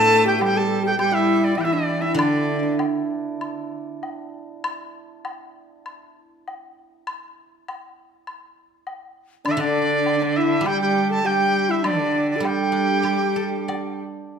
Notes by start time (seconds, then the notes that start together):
Already playing: A2 A3 B3 D4 E4 A4 A5
0.26 G4 G5
0.38 G3 G4, high woodblock, low woodblock
0.44 G5
0.56 G4 A4 A5
0.68 A4
0.82 G4 G5
0.87 G4 A4
0.98 G3 G4 G5, high woodblock
1.11 E4 E5
1.44 D5
1.55 E3 E4 E5, low woodblock
1.60 G5
1.64 E4 E5
1.72 D4 D5
2.01 E4 E5
2.14 D3 D4 D5
2.19 D4, high woodblock
2.63 E4
2.79 high woodblock, low woodblock
3.41 high woodblock
4.03 low woodblock
4.64 high woodblock
5.25 high woodblock, low woodblock
5.86 high woodblock
6.48 low woodblock
7.07 high woodblock
7.68 high woodblock, low woodblock
8.27 high woodblock
8.87 low woodblock
9.45 D3 D4 D5, high woodblock
9.51 E5
9.57 D3 D4 D5
9.62 D3
10.06 high woodblock, low woodblock
10.19 D4
10.36 E4 E5
10.61 G3
10.65 G4 G5, high woodblock
10.81 G4 G5
11.10 A4 A5
11.24 G3 G4 G5, low woodblock
11.69 E4 E5
11.82 D3 D4 D5, high woodblock
12.30 D5
12.36 A4
12.40 G3 G4
12.44 G4 G5, high woodblock, low woodblock
12.72 D4
13.03 G4, high woodblock
13.36 A4
13.68 D5, low woodblock